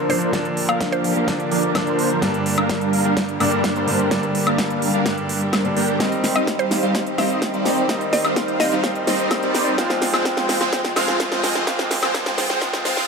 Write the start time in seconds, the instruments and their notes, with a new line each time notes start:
Already playing: grand piano D3 F3 A#3 D4, string section D3 F3 A#3 F4 A#4, supersaw synth F3 A#3 D4 A#4 C5
0.09 grand piano D3 F3 A#3 D4, synth pluck C5, open hi-hat
0.22 closed hi-hat
0.32 grand piano D3 F3 A#3 D4, supersaw synth F3 A#3 D4 A#4 D5, string section G4, kick, snare, closed hi-hat
0.45 closed hi-hat
0.57 open hi-hat
0.69 supersaw synth F3 A#3 D4 A#4 F5, synth pluck F5, high woodblock
0.81 kick, snare, closed hi-hat
0.92 synth pluck C5, closed hi-hat
1.04 open hi-hat
1.16 supersaw synth F3 A#3 D4 A#4 F5, closed hi-hat
1.27 grand piano D3 F3 A#3 D4, kick, snare, closed hi-hat
1.40 closed hi-hat
1.51 supersaw synth F3 A#3 D4 A#4 D5, open hi-hat
1.63 closed hi-hat
1.75 grand piano D3 F3 A#3 D4, kick, snare, closed hi-hat, high woodblock
1.87 supersaw synth F3 A#3 D4 A#4 C5, closed hi-hat
1.99 open hi-hat
2.11 closed hi-hat
2.21 grand piano G2 D3 G3 A#3 D4, string section D3 G3 G4, supersaw synth G3 A#3 D4 A#4, kick, snare, closed hi-hat
2.34 closed hi-hat
2.46 open hi-hat
2.58 supersaw synth G3 A#3 D4 A#4 F5, closed hi-hat, high woodblock
2.69 kick, snare, closed hi-hat
2.81 closed hi-hat
2.93 open hi-hat
3.05 supersaw synth G3 A#3 D4 A#4 F5, closed hi-hat
3.17 kick, snare, closed hi-hat
3.29 closed hi-hat
3.40 grand piano G2 D3 G3 A#3 D4, supersaw synth G3 A#3 D4 A#4 D5, open hi-hat, high woodblock
3.52 closed hi-hat
3.64 kick, snare, closed hi-hat
3.76 supersaw synth G3 A#3 D4 A#4 C5, closed hi-hat
3.87 grand piano G2 D3 G3 A#3 D4, open hi-hat
4.00 closed hi-hat
4.10 grand piano G2 D3 G3 A#3 D4, supersaw synth G3 A#3 D4 A#4 D5, kick, snare, closed hi-hat
4.23 closed hi-hat
4.35 open hi-hat
4.47 supersaw synth G3 A#3 D4 A#4 F5, closed hi-hat, high woodblock
4.58 kick, snare, closed hi-hat
4.70 closed hi-hat
4.82 open hi-hat
4.94 supersaw synth G3 A#3 D4 A#4 F5
5.05 grand piano G2 D3 G3 A#3 D4, kick, snare, closed hi-hat
5.18 closed hi-hat
5.29 open hi-hat
5.41 closed hi-hat
5.53 supersaw synth G3 A#3 D4 A#4 C5, kick, snare, closed hi-hat, high woodblock
5.64 grand piano G2 D3 G3 A#3 D4, closed hi-hat
5.76 supersaw synth G3 A#3 D4 A#4 G5, open hi-hat
5.88 closed hi-hat
5.99 grand piano D#3 G3 C4 D#4, string section D#3 C4 C5, supersaw synth G3 C4 D#4 C5 D#5, kick, snare, closed hi-hat, riser, shaker
6.12 closed hi-hat, shaker
6.24 snare, open hi-hat, shaker
6.35 supersaw synth G3 C4 D#4 C5 F5, synth pluck D#5, high woodblock, shaker
6.47 kick, snare, closed hi-hat, shaker
6.59 synth pluck C5, closed hi-hat
6.71 snare, open hi-hat, shaker
6.83 supersaw synth G3 C4 D#4 C5 F5, closed hi-hat, shaker
6.95 kick, snare, closed hi-hat, shaker
7.07 closed hi-hat
7.18 grand piano D#3 G3 C4 D#4, supersaw synth G3 C4 D#4 C5 D#5, synth pluck F5, snare, open hi-hat, high woodblock, shaker
7.30 closed hi-hat, shaker
7.42 kick, snare, closed hi-hat, shaker
7.54 supersaw synth G3 C4 D#4 C5 D5, closed hi-hat
7.65 grand piano D#3 G3 C4 D#4, snare, open hi-hat, shaker
7.77 closed hi-hat, shaker
7.88 grand piano D#3 G3 C4 D#4, supersaw synth G3 C4 D#4 C5 D#5, kick, snare, closed hi-hat, shaker
8.01 closed hi-hat, shaker
8.13 synth pluck D#5, snare, open hi-hat, shaker
8.24 supersaw synth G3 C4 D#4 C5 F5, closed hi-hat, high woodblock, shaker
8.36 kick, snare, closed hi-hat, shaker
8.48 closed hi-hat
8.60 synth pluck D#5, snare, open hi-hat, shaker
8.72 supersaw synth G3 C4 D#4 C5 F5, closed hi-hat, shaker
8.83 grand piano D#3 G3 C4 D#4, kick, snare, closed hi-hat, shaker
8.95 closed hi-hat
9.07 supersaw synth G3 C4 D#4 C5 D#5, snare, open hi-hat, shaker
9.19 closed hi-hat, shaker
9.30 grand piano D#3 G3 C4 D#4, kick, snare, closed hi-hat, high woodblock, shaker
9.43 supersaw synth G3 C4 D#4 C5 D5, closed hi-hat
9.55 snare, open hi-hat, shaker
9.66 closed hi-hat, shaker
9.77 grand piano F3 G#3 C4 F4, string section F3 G#3 G#4, supersaw synth G#3 C4 F4 C5 F5, kick, snare, closed hi-hat, shaker
9.90 snare, closed hi-hat, shaker
10.02 snare, open hi-hat, shaker
10.13 supersaw synth G#3 C4 F4 C5 G5, snare, high woodblock, shaker
10.25 kick, snare, closed hi-hat, shaker
10.37 snare, closed hi-hat
10.49 snare, open hi-hat, shaker
10.61 supersaw synth G#3 C4 F4 C5 G5, snare, closed hi-hat, shaker
10.73 kick, snare, closed hi-hat, shaker
10.85 snare, closed hi-hat
10.96 grand piano F3 G#3 C4 F4, supersaw synth G#3 C4 F4 C5 F5, snare, open hi-hat, high woodblock, shaker
11.08 snare, closed hi-hat, shaker
11.20 kick, snare, closed hi-hat, shaker
11.32 supersaw synth G#3 C4 F4 C5 D#5, snare, closed hi-hat
11.43 grand piano F3 G#3 C4 F4, snare, open hi-hat, shaker
11.55 snare, shaker
11.66 grand piano F3 G#3 C4 F4, supersaw synth G#3 C4 F4 C5 F5, kick, snare, closed hi-hat, shaker
11.79 snare, closed hi-hat, shaker
11.91 snare, open hi-hat, shaker
12.03 supersaw synth G#3 C4 F4 C5 G5, snare, high woodblock, shaker
12.14 kick, snare, closed hi-hat, shaker
12.26 snare, closed hi-hat, shaker
12.38 snare, open hi-hat, shaker
12.50 supersaw synth G#3 C4 F4 C5 G5, snare, closed hi-hat, shaker
12.61 grand piano F3 G#3 C4 F4, kick, snare, closed hi-hat, shaker
12.73 snare, closed hi-hat
12.85 supersaw synth G#3 C4 F4 C5 F5, snare, open hi-hat, shaker
12.97 snare, open hi-hat, shaker